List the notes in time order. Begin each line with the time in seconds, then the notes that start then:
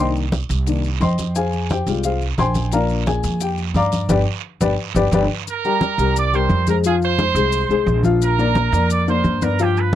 Already playing: C2
0.00 D#3 A#3 D4
0.15 high conga, maracas
0.32 high conga, short guiro, maracas
0.49 C2, high conga, short guiro, maracas
0.67 D#3 A#3 D4, high conga, long guiro, maracas
0.84 high conga, maracas
1.01 F2 C5 D#5 G5 C6, high conga, short guiro, maracas
1.18 high conga, short guiro, maracas
1.35 G#4 C5 F5 G#5, high conga, long guiro, maracas
1.53 high conga, maracas
1.69 G4 C5 G5, high conga, short guiro, maracas
1.87 C2 G3 G#3 F4, high conga, short guiro, maracas
2.03 F4 G#4 C5 F5, high conga, long guiro, maracas
2.21 high conga, maracas
2.38 A#1 C5 G5 G#5 C6, high conga, short guiro, maracas
2.54 high conga, short guiro, maracas
2.72 F3 A#3 D4 A#4 D5 F5 A#5, high conga, long guiro, maracas
2.89 high conga, maracas
3.06 G#4 G#5, high conga, short guiro, maracas
3.24 F2, high conga, short guiro, maracas
3.40 G4 G5, high conga, long guiro, maracas
3.58 high conga, maracas
3.74 G2 D5 F5 A#5 D6, high conga, short guiro, maracas
3.92 high conga, short guiro, maracas
4.09 G1 G4 B4 D5, high conga, long guiro, maracas
4.61 G1 G4 B4 D5, high conga, long guiro, maracas
4.95 G1 G4 B4 D5, high conga, maracas
5.12 G1 G4 B4 D5, high conga, long guiro, maracas
5.47 A#4 A#5, high conga, maracas
5.65 G3 G4 A#4, high conga, maracas
5.81 high conga, maracas
5.98 C2 G3 G4 A#4, high conga, maracas
6.16 D5 D6, high conga, maracas
6.33 G3 G4 A#4 C5 C6, high conga, maracas
6.49 F2, high conga, maracas
6.67 G#3 G#4 A#4 C5 A#5, high conga, maracas
6.84 F3 F4 G#4 F5 G#5, high conga, maracas
7.01 C5 C6, high conga, maracas
7.19 G#3 G#4 C5, high conga, maracas
7.35 C2 G#3 G#4 C5, high conga, maracas
7.52 high conga, maracas
7.69 C2 G#3 G#4 C5, high conga, maracas
7.86 A#1, high conga, maracas
8.03 F3 F4 F5, high conga, maracas
8.21 A#4 A#5, high conga, maracas
8.38 A#3 A#4 D5, high conga, maracas
8.55 high conga, maracas
8.72 F2 A#3 A#4 D5, high conga, maracas
8.90 D5 D6, high conga, maracas
9.08 A#3 A#4 C5 D5 C6, high conga, maracas
9.24 G2, high conga, maracas
9.42 B3 A#4 B4 D5 A#5, high conga, maracas
9.59 F3 F4 G4 F5 G5, high conga, maracas
9.76 B4 B5, high conga, maracas